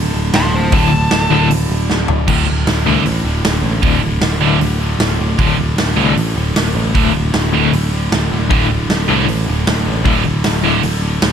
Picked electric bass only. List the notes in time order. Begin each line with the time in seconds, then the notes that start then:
Already playing: D1
0.14 D1
0.33 D1
0.52 D1
0.73 D1
0.92 D1
1.11 D1
1.30 D1
1.50 D1
1.69 D1
1.90 D1
2.28 D1
2.47 D1
2.67 D1
2.87 C2
3.06 A1
3.24 D1
3.43 D1
3.63 A1
3.83 D1
4.02 D1
4.21 D1
4.60 D1
4.99 D1
5.19 D1
5.39 D1
5.58 D1
5.78 D1
5.97 C2
6.16 A1
6.35 D1
6.55 D1
6.75 A1
6.96 D1
7.15 D1
7.34 D1
7.73 D1
8.12 D1
8.32 D1
8.51 D1
8.70 D1
8.89 D1
9.09 C2
9.29 A1
9.48 D1
9.68 D1
9.87 A1
10.05 D1
10.26 D1
10.45 D1
10.84 D1
11.23 D1